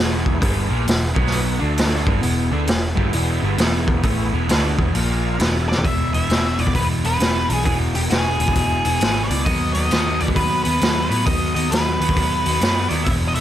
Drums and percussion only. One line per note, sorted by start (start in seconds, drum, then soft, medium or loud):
0.26 kick medium
0.42 kick loud
0.42 open hi-hat medium
0.87 snare loud
0.87 open hi-hat medium
1.16 kick medium
1.27 snare soft
1.32 open hi-hat medium
1.78 snare loud
1.78 open hi-hat medium
2.07 kick loud
2.23 open hi-hat soft
2.67 snare loud
2.67 open hi-hat soft
2.97 kick medium
3.13 open hi-hat soft
3.58 snare loud
3.58 open hi-hat medium
3.88 kick medium
4.03 kick loud
4.03 open hi-hat medium
4.49 snare loud
4.49 open hi-hat medium
4.79 kick medium
4.95 open hi-hat medium
5.40 snare loud
5.40 open hi-hat soft
5.71 snare medium
5.77 floor tom medium
5.85 kick medium
5.85 open hi-hat medium
6.14 open hi-hat soft
6.30 snare loud
6.30 open hi-hat medium
6.59 open hi-hat soft
6.67 kick medium
6.75 kick medium
6.75 open hi-hat medium
7.04 open hi-hat soft
7.20 snare loud
7.20 open hi-hat medium
7.50 open hi-hat soft
7.65 kick loud
7.65 open hi-hat medium
7.95 open hi-hat soft
8.10 snare loud
8.10 open hi-hat medium
8.40 open hi-hat soft
8.48 kick medium
8.55 kick medium
8.55 open hi-hat medium
8.85 open hi-hat soft
9.01 snare loud
9.01 open hi-hat medium
9.30 open hi-hat soft
9.46 kick medium
9.46 open hi-hat medium
9.75 open hi-hat soft
9.91 snare medium
9.91 open hi-hat medium
10.20 open hi-hat soft
10.28 kick medium
10.36 kick medium
10.36 open hi-hat medium
10.65 open hi-hat soft
10.81 snare loud
10.81 open hi-hat medium
11.11 open hi-hat soft
11.27 kick loud
11.27 open hi-hat medium
11.56 open hi-hat soft
11.72 snare loud
11.72 open hi-hat medium
12.01 open hi-hat soft
12.09 kick medium
12.17 kick medium
12.17 open hi-hat medium
12.46 open hi-hat soft
12.61 snare loud
12.61 open hi-hat medium
12.90 open hi-hat soft
13.06 kick medium
13.06 open hi-hat medium
13.35 open hi-hat soft